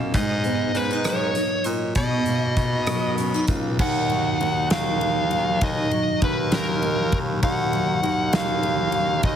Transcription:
Already playing: baritone saxophone F#2, steel-string acoustic guitar B2 F#3 A#3 D#4
0.14 baritone saxophone G#2, steel-string acoustic guitar G#2, lead electric guitar D#5, kick, closed hi-hat
0.44 steel-string acoustic guitar B3, closed hi-hat
0.74 baritone saxophone G#2, steel-string acoustic guitar C#4, lead electric guitar B4, closed hi-hat
0.91 steel-string acoustic guitar D#4
1.04 steel-string acoustic guitar F#3, lead electric guitar C#5, cross-stick, closed hi-hat
1.35 steel-string acoustic guitar D#4, closed hi-hat
1.64 baritone saxophone A#2, closed hi-hat
1.95 baritone saxophone B2, steel-string acoustic guitar B2, lead electric guitar D#5, kick, closed hi-hat
2.26 steel-string acoustic guitar A#3, closed hi-hat
2.57 baritone saxophone B2, steel-string acoustic guitar D#4, kick, closed hi-hat
2.87 steel-string acoustic guitar F#3, cross-stick, closed hi-hat
3.18 steel-string acoustic guitar C#4, closed hi-hat
3.34 steel-string acoustic guitar D#4
3.48 baritone saxophone C#2, steel-string acoustic guitar A#3, kick, closed hi-hat
3.79 baritone saxophone D#2, steel-string acoustic guitar D#3, lead electric guitar F#5, kick, crash
4.10 steel-string acoustic guitar F#3, ride
4.40 baritone saxophone D#2, steel-string acoustic guitar D#4, ride
4.70 steel-string acoustic guitar F#3, lead electric guitar F5, snare, ride
5.01 ride
5.31 steel-string acoustic guitar F#3, ride
5.61 baritone saxophone D#2, steel-string acoustic guitar D#3, lead electric guitar D#5, kick, ride
5.91 steel-string acoustic guitar F#3, ride
6.22 baritone saxophone D#2, steel-string acoustic guitar D#4, lead electric guitar B4, kick, ride
6.52 steel-string acoustic guitar F#3, lead electric guitar A#4, snare, ride
6.82 steel-string acoustic guitar A#3, ride
7.12 steel-string acoustic guitar F#3, kick, ride
7.43 baritone saxophone D#2, steel-string acoustic guitar D#3, lead electric guitar F#5, kick, ride
7.73 steel-string acoustic guitar F#3, ride
8.03 baritone saxophone D#2, steel-string acoustic guitar D#4, ride
8.33 steel-string acoustic guitar F#3, lead electric guitar F5, snare, ride
8.63 ride
8.92 steel-string acoustic guitar F#3, ride
9.23 baritone saxophone D#2, steel-string acoustic guitar D#3, lead electric guitar D#5, kick, ride

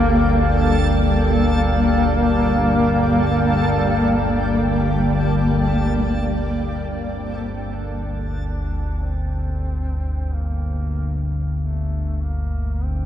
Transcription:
Already playing: synth drone G1 D2, ambient pad G3 A#3 D5 G5, duduk A#3, synth texture A4 A5
1.30 duduk A#3
6.46 synth drone G1 D2, duduk A#3
7.11 duduk C4
7.74 duduk D4
9.02 duduk C4
10.33 duduk A#3
11.59 duduk A3
12.21 duduk A#3
12.84 duduk C4

